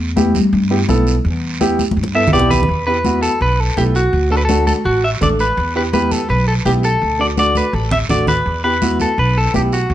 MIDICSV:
0, 0, Header, 1, 6, 480
1, 0, Start_track
1, 0, Key_signature, 1, "minor"
1, 0, Tempo, 360577
1, 1659, Time_signature, 4, 2, 24, 8
1, 13235, End_track
2, 0, Start_track
2, 0, Title_t, "Clean electric guitar"
2, 0, Program_c, 0, 27
2, 2865, Note_on_c, 0, 76, 89
2, 3098, Note_off_c, 0, 76, 0
2, 3103, Note_on_c, 0, 74, 98
2, 3324, Note_off_c, 0, 74, 0
2, 3335, Note_on_c, 0, 71, 98
2, 3783, Note_off_c, 0, 71, 0
2, 3816, Note_on_c, 0, 71, 94
2, 4263, Note_off_c, 0, 71, 0
2, 4292, Note_on_c, 0, 69, 93
2, 4518, Note_off_c, 0, 69, 0
2, 4552, Note_on_c, 0, 71, 95
2, 4794, Note_off_c, 0, 71, 0
2, 4794, Note_on_c, 0, 69, 82
2, 5028, Note_on_c, 0, 67, 84
2, 5033, Note_off_c, 0, 69, 0
2, 5095, Note_off_c, 0, 67, 0
2, 5269, Note_on_c, 0, 66, 91
2, 5710, Note_off_c, 0, 66, 0
2, 5749, Note_on_c, 0, 69, 89
2, 5815, Note_off_c, 0, 69, 0
2, 5820, Note_on_c, 0, 71, 79
2, 5917, Note_off_c, 0, 71, 0
2, 5922, Note_on_c, 0, 69, 92
2, 6201, Note_off_c, 0, 69, 0
2, 6217, Note_on_c, 0, 69, 92
2, 6283, Note_off_c, 0, 69, 0
2, 6463, Note_on_c, 0, 66, 93
2, 6708, Note_off_c, 0, 66, 0
2, 6714, Note_on_c, 0, 76, 84
2, 6780, Note_off_c, 0, 76, 0
2, 6958, Note_on_c, 0, 74, 88
2, 7024, Note_off_c, 0, 74, 0
2, 7195, Note_on_c, 0, 71, 92
2, 7634, Note_off_c, 0, 71, 0
2, 7679, Note_on_c, 0, 71, 89
2, 7746, Note_off_c, 0, 71, 0
2, 7903, Note_on_c, 0, 71, 91
2, 8138, Note_off_c, 0, 71, 0
2, 8138, Note_on_c, 0, 69, 90
2, 8379, Note_off_c, 0, 69, 0
2, 8385, Note_on_c, 0, 71, 88
2, 8606, Note_off_c, 0, 71, 0
2, 8624, Note_on_c, 0, 69, 79
2, 8691, Note_off_c, 0, 69, 0
2, 8865, Note_on_c, 0, 67, 77
2, 8931, Note_off_c, 0, 67, 0
2, 9116, Note_on_c, 0, 69, 89
2, 9595, Note_on_c, 0, 74, 89
2, 9602, Note_off_c, 0, 69, 0
2, 9662, Note_off_c, 0, 74, 0
2, 9841, Note_on_c, 0, 74, 95
2, 10054, Note_off_c, 0, 74, 0
2, 10081, Note_on_c, 0, 71, 85
2, 10306, Note_off_c, 0, 71, 0
2, 10306, Note_on_c, 0, 69, 90
2, 10543, Note_off_c, 0, 69, 0
2, 10548, Note_on_c, 0, 76, 85
2, 10615, Note_off_c, 0, 76, 0
2, 10789, Note_on_c, 0, 74, 87
2, 11021, Note_off_c, 0, 74, 0
2, 11026, Note_on_c, 0, 71, 88
2, 11470, Note_off_c, 0, 71, 0
2, 11502, Note_on_c, 0, 71, 91
2, 11948, Note_off_c, 0, 71, 0
2, 12000, Note_on_c, 0, 69, 84
2, 12214, Note_off_c, 0, 69, 0
2, 12236, Note_on_c, 0, 71, 82
2, 12475, Note_off_c, 0, 71, 0
2, 12482, Note_on_c, 0, 69, 83
2, 12695, Note_off_c, 0, 69, 0
2, 12723, Note_on_c, 0, 67, 77
2, 12790, Note_off_c, 0, 67, 0
2, 12955, Note_on_c, 0, 66, 82
2, 13235, Note_off_c, 0, 66, 0
2, 13235, End_track
3, 0, Start_track
3, 0, Title_t, "Upright piano"
3, 0, Program_c, 1, 0
3, 215, Note_on_c, 1, 59, 77
3, 222, Note_on_c, 1, 64, 70
3, 225, Note_on_c, 1, 67, 87
3, 470, Note_off_c, 1, 59, 0
3, 473, Note_off_c, 1, 64, 0
3, 475, Note_off_c, 1, 67, 0
3, 936, Note_on_c, 1, 59, 78
3, 942, Note_on_c, 1, 64, 68
3, 945, Note_on_c, 1, 67, 84
3, 1022, Note_off_c, 1, 59, 0
3, 1025, Note_off_c, 1, 64, 0
3, 1026, Note_off_c, 1, 67, 0
3, 1177, Note_on_c, 1, 59, 86
3, 1185, Note_on_c, 1, 64, 75
3, 1190, Note_on_c, 1, 69, 96
3, 1514, Note_off_c, 1, 59, 0
3, 1518, Note_off_c, 1, 64, 0
3, 1520, Note_off_c, 1, 69, 0
3, 2137, Note_on_c, 1, 59, 94
3, 2142, Note_on_c, 1, 64, 81
3, 2144, Note_on_c, 1, 67, 101
3, 2390, Note_off_c, 1, 59, 0
3, 2392, Note_off_c, 1, 64, 0
3, 2393, Note_off_c, 1, 67, 0
3, 2855, Note_on_c, 1, 59, 87
3, 2861, Note_on_c, 1, 64, 76
3, 2869, Note_on_c, 1, 69, 91
3, 2941, Note_off_c, 1, 59, 0
3, 2943, Note_off_c, 1, 64, 0
3, 2947, Note_off_c, 1, 69, 0
3, 3094, Note_on_c, 1, 59, 92
3, 3100, Note_on_c, 1, 64, 84
3, 3103, Note_on_c, 1, 67, 96
3, 3432, Note_off_c, 1, 59, 0
3, 3435, Note_off_c, 1, 64, 0
3, 3436, Note_off_c, 1, 67, 0
3, 3819, Note_on_c, 1, 59, 65
3, 3826, Note_on_c, 1, 64, 59
3, 3830, Note_on_c, 1, 67, 64
3, 3902, Note_off_c, 1, 59, 0
3, 3906, Note_off_c, 1, 64, 0
3, 3908, Note_off_c, 1, 67, 0
3, 4054, Note_on_c, 1, 59, 73
3, 4061, Note_on_c, 1, 64, 65
3, 4062, Note_on_c, 1, 66, 79
3, 4392, Note_off_c, 1, 59, 0
3, 4395, Note_off_c, 1, 64, 0
3, 4396, Note_off_c, 1, 66, 0
3, 5018, Note_on_c, 1, 59, 64
3, 5023, Note_on_c, 1, 64, 65
3, 5026, Note_on_c, 1, 69, 81
3, 5270, Note_off_c, 1, 59, 0
3, 5272, Note_off_c, 1, 64, 0
3, 5274, Note_off_c, 1, 69, 0
3, 5728, Note_on_c, 1, 57, 66
3, 5734, Note_on_c, 1, 62, 56
3, 5737, Note_on_c, 1, 66, 71
3, 5817, Note_off_c, 1, 57, 0
3, 5820, Note_off_c, 1, 62, 0
3, 5822, Note_off_c, 1, 66, 0
3, 5971, Note_on_c, 1, 57, 76
3, 5977, Note_on_c, 1, 62, 67
3, 5983, Note_on_c, 1, 66, 81
3, 6311, Note_off_c, 1, 57, 0
3, 6314, Note_off_c, 1, 62, 0
3, 6317, Note_off_c, 1, 66, 0
3, 6934, Note_on_c, 1, 57, 71
3, 6938, Note_on_c, 1, 62, 69
3, 6946, Note_on_c, 1, 69, 82
3, 7189, Note_off_c, 1, 57, 0
3, 7190, Note_off_c, 1, 62, 0
3, 7195, Note_off_c, 1, 69, 0
3, 7654, Note_on_c, 1, 59, 61
3, 7659, Note_on_c, 1, 64, 57
3, 7665, Note_on_c, 1, 67, 75
3, 7741, Note_off_c, 1, 59, 0
3, 7743, Note_off_c, 1, 64, 0
3, 7746, Note_off_c, 1, 67, 0
3, 7888, Note_on_c, 1, 59, 70
3, 7897, Note_on_c, 1, 64, 64
3, 7901, Note_on_c, 1, 67, 78
3, 8230, Note_off_c, 1, 59, 0
3, 8234, Note_off_c, 1, 64, 0
3, 8236, Note_off_c, 1, 67, 0
3, 8858, Note_on_c, 1, 59, 74
3, 8862, Note_on_c, 1, 64, 67
3, 8868, Note_on_c, 1, 67, 80
3, 9111, Note_off_c, 1, 59, 0
3, 9113, Note_off_c, 1, 64, 0
3, 9116, Note_off_c, 1, 67, 0
3, 9573, Note_on_c, 1, 57, 67
3, 9579, Note_on_c, 1, 62, 58
3, 9585, Note_on_c, 1, 66, 64
3, 9660, Note_off_c, 1, 57, 0
3, 9663, Note_off_c, 1, 62, 0
3, 9666, Note_off_c, 1, 66, 0
3, 9807, Note_on_c, 1, 57, 68
3, 9813, Note_on_c, 1, 62, 67
3, 9820, Note_on_c, 1, 66, 84
3, 10150, Note_off_c, 1, 57, 0
3, 10152, Note_off_c, 1, 62, 0
3, 10156, Note_off_c, 1, 66, 0
3, 10772, Note_on_c, 1, 57, 75
3, 10774, Note_on_c, 1, 62, 64
3, 10783, Note_on_c, 1, 66, 78
3, 11028, Note_off_c, 1, 57, 0
3, 11029, Note_off_c, 1, 62, 0
3, 11034, Note_off_c, 1, 66, 0
3, 11492, Note_on_c, 1, 59, 59
3, 11501, Note_on_c, 1, 64, 56
3, 11504, Note_on_c, 1, 67, 69
3, 11580, Note_off_c, 1, 59, 0
3, 11585, Note_off_c, 1, 64, 0
3, 11586, Note_off_c, 1, 67, 0
3, 11736, Note_on_c, 1, 59, 72
3, 11740, Note_on_c, 1, 64, 69
3, 11746, Note_on_c, 1, 66, 79
3, 12074, Note_off_c, 1, 59, 0
3, 12076, Note_off_c, 1, 64, 0
3, 12079, Note_off_c, 1, 66, 0
3, 12693, Note_on_c, 1, 59, 65
3, 12696, Note_on_c, 1, 64, 66
3, 12704, Note_on_c, 1, 67, 80
3, 12949, Note_off_c, 1, 59, 0
3, 12951, Note_off_c, 1, 64, 0
3, 12954, Note_off_c, 1, 67, 0
3, 13235, End_track
4, 0, Start_track
4, 0, Title_t, "Marimba"
4, 0, Program_c, 2, 12
4, 0, Note_on_c, 2, 59, 103
4, 172, Note_off_c, 2, 59, 0
4, 222, Note_on_c, 2, 57, 95
4, 444, Note_off_c, 2, 57, 0
4, 466, Note_on_c, 2, 55, 85
4, 3047, Note_off_c, 2, 55, 0
4, 13235, End_track
5, 0, Start_track
5, 0, Title_t, "Upright bass"
5, 0, Program_c, 3, 32
5, 0, Note_on_c, 3, 40, 93
5, 508, Note_off_c, 3, 40, 0
5, 701, Note_on_c, 3, 43, 94
5, 1084, Note_off_c, 3, 43, 0
5, 1180, Note_on_c, 3, 35, 88
5, 1563, Note_off_c, 3, 35, 0
5, 1659, Note_on_c, 3, 40, 100
5, 2426, Note_off_c, 3, 40, 0
5, 2616, Note_on_c, 3, 43, 86
5, 3000, Note_off_c, 3, 43, 0
5, 3095, Note_on_c, 3, 35, 91
5, 3480, Note_off_c, 3, 35, 0
5, 3576, Note_on_c, 3, 40, 86
5, 4345, Note_off_c, 3, 40, 0
5, 4535, Note_on_c, 3, 35, 92
5, 4920, Note_off_c, 3, 35, 0
5, 5015, Note_on_c, 3, 35, 87
5, 5400, Note_off_c, 3, 35, 0
5, 5495, Note_on_c, 3, 38, 93
5, 6264, Note_off_c, 3, 38, 0
5, 6456, Note_on_c, 3, 33, 92
5, 6841, Note_off_c, 3, 33, 0
5, 6940, Note_on_c, 3, 33, 85
5, 7324, Note_off_c, 3, 33, 0
5, 7417, Note_on_c, 3, 40, 97
5, 8186, Note_off_c, 3, 40, 0
5, 8380, Note_on_c, 3, 35, 93
5, 8764, Note_off_c, 3, 35, 0
5, 8856, Note_on_c, 3, 35, 86
5, 9241, Note_off_c, 3, 35, 0
5, 9342, Note_on_c, 3, 38, 89
5, 10109, Note_off_c, 3, 38, 0
5, 10293, Note_on_c, 3, 33, 98
5, 10680, Note_off_c, 3, 33, 0
5, 10779, Note_on_c, 3, 33, 86
5, 11164, Note_off_c, 3, 33, 0
5, 11258, Note_on_c, 3, 40, 82
5, 12027, Note_off_c, 3, 40, 0
5, 12218, Note_on_c, 3, 35, 92
5, 12603, Note_off_c, 3, 35, 0
5, 12701, Note_on_c, 3, 35, 81
5, 13085, Note_off_c, 3, 35, 0
5, 13175, Note_on_c, 3, 38, 99
5, 13235, Note_off_c, 3, 38, 0
5, 13235, End_track
6, 0, Start_track
6, 0, Title_t, "Drums"
6, 222, Note_on_c, 9, 63, 93
6, 224, Note_on_c, 9, 73, 73
6, 355, Note_off_c, 9, 63, 0
6, 357, Note_off_c, 9, 73, 0
6, 462, Note_on_c, 9, 63, 73
6, 465, Note_on_c, 9, 73, 74
6, 595, Note_off_c, 9, 63, 0
6, 598, Note_off_c, 9, 73, 0
6, 702, Note_on_c, 9, 74, 78
6, 835, Note_off_c, 9, 74, 0
6, 1181, Note_on_c, 9, 73, 71
6, 1182, Note_on_c, 9, 63, 82
6, 1314, Note_off_c, 9, 73, 0
6, 1315, Note_off_c, 9, 63, 0
6, 1422, Note_on_c, 9, 73, 73
6, 1555, Note_off_c, 9, 73, 0
6, 1662, Note_on_c, 9, 74, 70
6, 1795, Note_off_c, 9, 74, 0
6, 2142, Note_on_c, 9, 73, 73
6, 2143, Note_on_c, 9, 63, 85
6, 2275, Note_off_c, 9, 73, 0
6, 2276, Note_off_c, 9, 63, 0
6, 2385, Note_on_c, 9, 63, 82
6, 2385, Note_on_c, 9, 73, 76
6, 2518, Note_off_c, 9, 63, 0
6, 2518, Note_off_c, 9, 73, 0
6, 2547, Note_on_c, 9, 63, 104
6, 2624, Note_on_c, 9, 74, 75
6, 2681, Note_off_c, 9, 63, 0
6, 2709, Note_on_c, 9, 63, 70
6, 2757, Note_off_c, 9, 74, 0
6, 2842, Note_off_c, 9, 63, 0
6, 3028, Note_on_c, 9, 64, 99
6, 3108, Note_on_c, 9, 73, 67
6, 3161, Note_off_c, 9, 64, 0
6, 3187, Note_on_c, 9, 64, 73
6, 3241, Note_off_c, 9, 73, 0
6, 3320, Note_off_c, 9, 64, 0
6, 3340, Note_on_c, 9, 64, 77
6, 3343, Note_on_c, 9, 73, 74
6, 3473, Note_off_c, 9, 64, 0
6, 3477, Note_off_c, 9, 73, 0
6, 3499, Note_on_c, 9, 64, 90
6, 3583, Note_on_c, 9, 74, 61
6, 3632, Note_off_c, 9, 64, 0
6, 3716, Note_off_c, 9, 74, 0
6, 4054, Note_on_c, 9, 63, 83
6, 4058, Note_on_c, 9, 73, 69
6, 4188, Note_off_c, 9, 63, 0
6, 4191, Note_off_c, 9, 73, 0
6, 4297, Note_on_c, 9, 73, 70
6, 4430, Note_off_c, 9, 73, 0
6, 4534, Note_on_c, 9, 74, 76
6, 4668, Note_off_c, 9, 74, 0
6, 5019, Note_on_c, 9, 63, 77
6, 5021, Note_on_c, 9, 73, 67
6, 5152, Note_off_c, 9, 63, 0
6, 5154, Note_off_c, 9, 73, 0
6, 5259, Note_on_c, 9, 73, 64
6, 5393, Note_off_c, 9, 73, 0
6, 5496, Note_on_c, 9, 74, 64
6, 5629, Note_off_c, 9, 74, 0
6, 5975, Note_on_c, 9, 73, 75
6, 5978, Note_on_c, 9, 63, 85
6, 6108, Note_off_c, 9, 73, 0
6, 6111, Note_off_c, 9, 63, 0
6, 6218, Note_on_c, 9, 73, 74
6, 6222, Note_on_c, 9, 63, 68
6, 6352, Note_off_c, 9, 73, 0
6, 6356, Note_off_c, 9, 63, 0
6, 6464, Note_on_c, 9, 74, 72
6, 6597, Note_off_c, 9, 74, 0
6, 6940, Note_on_c, 9, 73, 69
6, 6945, Note_on_c, 9, 63, 87
6, 6945, Note_on_c, 9, 64, 82
6, 7073, Note_off_c, 9, 73, 0
6, 7078, Note_off_c, 9, 63, 0
6, 7078, Note_off_c, 9, 64, 0
6, 7178, Note_on_c, 9, 73, 60
6, 7311, Note_off_c, 9, 73, 0
6, 7422, Note_on_c, 9, 74, 59
6, 7555, Note_off_c, 9, 74, 0
6, 7898, Note_on_c, 9, 73, 69
6, 7899, Note_on_c, 9, 63, 83
6, 8031, Note_off_c, 9, 73, 0
6, 8032, Note_off_c, 9, 63, 0
6, 8141, Note_on_c, 9, 73, 73
6, 8146, Note_on_c, 9, 63, 67
6, 8274, Note_off_c, 9, 73, 0
6, 8279, Note_off_c, 9, 63, 0
6, 8375, Note_on_c, 9, 74, 72
6, 8508, Note_off_c, 9, 74, 0
6, 8858, Note_on_c, 9, 73, 68
6, 8863, Note_on_c, 9, 63, 73
6, 8991, Note_off_c, 9, 73, 0
6, 8996, Note_off_c, 9, 63, 0
6, 9097, Note_on_c, 9, 73, 65
6, 9230, Note_off_c, 9, 73, 0
6, 9338, Note_on_c, 9, 74, 67
6, 9471, Note_off_c, 9, 74, 0
6, 9816, Note_on_c, 9, 63, 80
6, 9817, Note_on_c, 9, 73, 76
6, 9949, Note_off_c, 9, 63, 0
6, 9950, Note_off_c, 9, 73, 0
6, 10052, Note_on_c, 9, 63, 74
6, 10060, Note_on_c, 9, 73, 71
6, 10185, Note_off_c, 9, 63, 0
6, 10193, Note_off_c, 9, 73, 0
6, 10304, Note_on_c, 9, 74, 74
6, 10437, Note_off_c, 9, 74, 0
6, 10534, Note_on_c, 9, 64, 85
6, 10667, Note_off_c, 9, 64, 0
6, 10776, Note_on_c, 9, 64, 72
6, 10776, Note_on_c, 9, 73, 66
6, 10909, Note_off_c, 9, 64, 0
6, 10909, Note_off_c, 9, 73, 0
6, 11013, Note_on_c, 9, 64, 91
6, 11023, Note_on_c, 9, 73, 61
6, 11146, Note_off_c, 9, 64, 0
6, 11156, Note_off_c, 9, 73, 0
6, 11261, Note_on_c, 9, 74, 58
6, 11395, Note_off_c, 9, 74, 0
6, 11739, Note_on_c, 9, 73, 71
6, 11741, Note_on_c, 9, 63, 88
6, 11872, Note_off_c, 9, 73, 0
6, 11874, Note_off_c, 9, 63, 0
6, 11976, Note_on_c, 9, 73, 69
6, 11982, Note_on_c, 9, 63, 68
6, 12109, Note_off_c, 9, 73, 0
6, 12115, Note_off_c, 9, 63, 0
6, 12223, Note_on_c, 9, 74, 71
6, 12356, Note_off_c, 9, 74, 0
6, 12700, Note_on_c, 9, 63, 81
6, 12704, Note_on_c, 9, 73, 69
6, 12833, Note_off_c, 9, 63, 0
6, 12837, Note_off_c, 9, 73, 0
6, 12945, Note_on_c, 9, 73, 68
6, 13078, Note_off_c, 9, 73, 0
6, 13178, Note_on_c, 9, 74, 70
6, 13235, Note_off_c, 9, 74, 0
6, 13235, End_track
0, 0, End_of_file